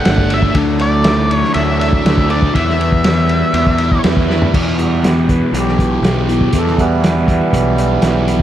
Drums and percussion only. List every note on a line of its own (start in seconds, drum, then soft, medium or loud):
0.05 snare loud
0.05 ride loud
0.18 kick medium
0.30 ride medium
0.43 kick medium
0.55 kick medium
0.55 ride medium
0.79 ride medium
1.04 snare medium
1.04 ride medium
1.31 ride medium
1.44 snare soft
1.54 ride medium
1.81 ride medium
1.93 kick medium
2.06 snare loud
2.06 ride medium
2.18 kick medium
2.30 ride medium
2.43 kick medium
2.55 kick loud
2.55 ride medium
2.69 snare soft
2.81 ride medium
2.92 kick medium
3.04 snare loud
3.04 ride medium
3.29 ride medium
3.54 ride medium
3.67 kick medium
3.78 ride medium
3.92 kick medium
4.04 snare loud
4.04 ride medium
4.17 kick medium
4.30 snare medium
4.42 floor tom medium
4.54 kick loud
4.54 crash loud
4.79 closed hi-hat medium
5.04 snare loud
5.04 closed hi-hat medium
5.29 kick medium
5.29 closed hi-hat medium
5.54 closed hi-hat medium
5.68 snare soft
5.79 kick medium
5.79 closed hi-hat medium
6.04 snare loud
6.04 closed hi-hat medium
6.29 closed hi-hat medium
6.41 kick medium
6.53 kick loud
6.53 closed hi-hat medium
6.67 snare soft
6.78 kick medium
6.78 closed hi-hat medium
7.04 snare loud
7.04 closed hi-hat medium
7.28 kick medium
7.28 closed hi-hat medium
7.53 kick medium
7.53 closed hi-hat medium
7.78 closed hi-hat medium
8.02 snare medium
8.02 closed hi-hat medium
8.28 closed hi-hat medium